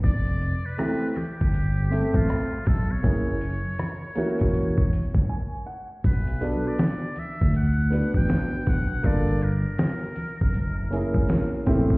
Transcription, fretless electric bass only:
0.04 F1
1.41 G1
2.14 A1
2.67 B1
3.04 F#1
4.41 E1
5.15 F#1
6.04 B1
7.41 D2
8.14 A1
8.67 B1
9.04 G1
10.41 E1
10.54 F#1
11.14 G#1
11.67 A#1

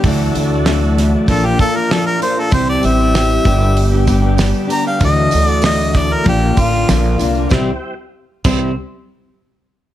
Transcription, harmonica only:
1.29 A4
1.46 G4
1.60 A4
1.76 A#4
1.92 A4
2.06 A#4
2.23 C5
2.39 A4
2.54 C5
2.69 D5
2.85 E5
4.72 A#5
4.88 F5
5.05 D#5
5.47 D5
5.65 D#5
5.97 D5
6.13 A#4
6.29 G4
6.60 F4

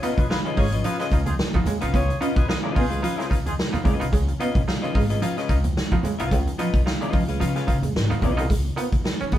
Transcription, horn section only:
0.17 F4 G#4 B4
0.30 F4 G#4 B4
0.56 F4 G#4 C#5
0.84 F4 G#4 B4
0.98 F4 G#4 B4
1.25 D#4 F4 G#4
1.93 F4 G#4 C#5
2.36 F4 G#4 B4
2.48 F4 G#4 B4
2.75 D#4 F4 G#4
3.02 F4 G#4 B4
3.18 D#4 F4 G#4
3.46 D#4 F4 G#4

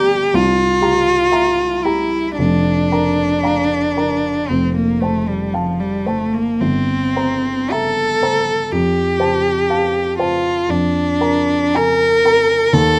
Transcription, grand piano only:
Already playing: G1 G4 D5 A#5
0.34 C2
0.81 G4 A#5
1.32 E5 A#5
1.85 G4 A#5
2.39 F1
2.92 A#4 A#5
3.43 F5 A#5
3.97 A#4 A#5
4.50 F1
5.02 C5 A5
5.54 F5 A5
6.06 C5 A5
6.61 G1
7.16 C5 A#5
7.71 E5 A#5
8.23 C5 A#5
8.72 F2
9.20 C5 A5
9.70 F5 A5
10.19 C5 A5
10.68 F2
11.21 A#4 A#5
11.75 G#5 A#5
12.25 A#4 A#5
12.73 D#2

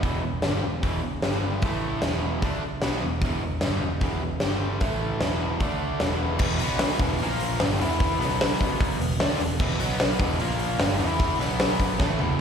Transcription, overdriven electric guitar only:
0.04 E2 B2 E3
0.23 E2 B2
0.43 G2 D3 G3
0.63 E2 B2
0.83 E2 B2 E3
1.03 E2 B2
1.23 G2 D3 G3
1.64 A2 E3 A3
2.04 E2 B2 E3
2.44 D3 A3 D4
2.64 muted overdriven electric guitar stroke
2.83 B2 F#3 B3
3.05 E2 B2
3.24 E2 B2 E3
3.44 E2 B2
3.63 G2 D3 G3
3.83 E2 B2
4.02 E2 B2 E3
4.23 E2 B2
4.42 G2 D3 G3
4.81 A2 E3 A3
5.22 E2 B2 E3
5.62 D3 A3 D4
6.02 E2 B2 E3
6.41 E2 B2 E3
6.62 B2 F#3 B3
7.01 E2 B2 E3
7.22 A#2 F3 A#3
7.60 G2 D3 G3
7.81 E3 B3 E4
8.20 B2 F#3 B3
9.01 E2 B2
9.20 D3 A3 D4
9.41 E2 B2
9.60 E2 B2 E3
9.79 B2 F#3 B3
10.21 E2 B2 E3
10.40 A#2 F3 A#3
10.79 G2 D3 G3
10.99 E3 B3 E4
11.40 B2 F#3 B3
12.00 A2 E3 A3
12.19 E2 B2 E3

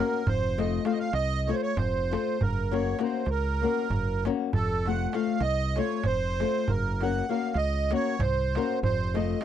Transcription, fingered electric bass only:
0.26 F1
1.13 C2
1.77 F1
2.41 F#1
3.26 C#2
3.90 F#1
4.54 F1
5.40 C2
6.05 F1
6.69 F#1
7.55 C#2
8.19 C2
8.83 F1

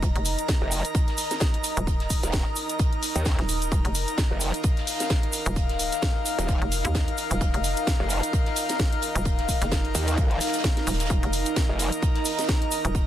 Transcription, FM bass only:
0.03 D#1
0.16 F1
1.77 D#1
3.39 D#1
3.72 D#1
3.85 F1
5.46 D#1
6.62 F1
6.85 D#2
7.31 D#1
7.41 D#1
7.54 F1
9.15 D#1
9.62 F#1
10.87 D#1
11.10 D#1
11.23 F1
12.85 D#1

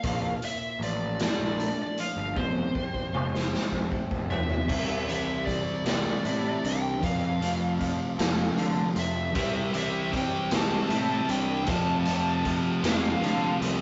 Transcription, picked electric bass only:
0.04 A#1
0.80 A1
1.40 A#1
2.17 G1
2.36 F1
3.13 F1
3.72 F1
4.11 F1
4.69 C2
5.85 C2
6.25 A2
6.64 C2
7.02 F2
8.19 F2
8.57 D3
8.96 F2
9.36 C2
10.52 C2
10.91 A2
11.29 C2
11.68 F2
12.83 F2
13.22 D3
13.61 C2

